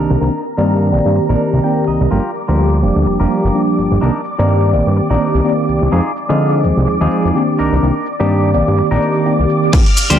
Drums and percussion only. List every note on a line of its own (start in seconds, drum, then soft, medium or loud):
2.12 maracas soft
2.35 maracas medium
2.48 maracas soft
2.59 maracas soft
2.83 maracas medium
2.96 maracas medium
3.06 maracas soft
3.31 maracas medium
3.43 maracas medium
3.54 maracas soft
3.78 maracas medium
3.91 maracas soft
4.01 maracas soft
4.24 maracas medium
4.39 maracas soft
4.49 maracas soft
4.73 maracas medium
4.86 maracas soft
4.97 maracas soft
5.20 maracas medium
5.34 maracas soft
5.46 maracas soft
5.68 maracas medium
5.81 maracas soft
5.91 maracas soft
6.16 maracas medium
6.29 maracas soft
6.40 maracas soft
6.64 maracas medium
6.77 maracas soft
6.88 maracas soft
7.11 maracas medium
7.25 maracas soft
7.36 maracas soft
7.58 maracas medium
7.72 maracas soft
7.84 maracas soft
8.06 maracas medium
8.20 maracas soft
8.30 maracas soft
8.54 maracas medium
8.67 maracas soft
8.77 maracas soft
9.02 maracas medium
9.15 maracas soft
9.26 maracas soft
9.49 maracas medium
9.63 maracas soft
9.73 kick loud
9.73 crash loud
9.73 maracas soft
9.86 closed hi-hat medium
9.97 open hi-hat loud
9.97 maracas loud
10.10 closed hi-hat medium
10.10 maracas medium